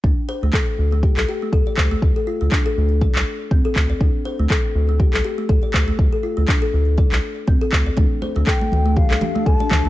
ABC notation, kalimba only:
X:1
M:4/4
L:1/16
Q:"Swing 16ths" 1/4=121
K:F
V:1 name="Kalimba"
D z c A, A z2 A, G A G A, A d c A, | z A F A, D A z2 d z3 C A z d | D z c A, A z2 A, G A G A, A d c A, | z A F A, D A z2 d z3 C A z d |
D z c A, A z2 A, G A G A, A d z A, |]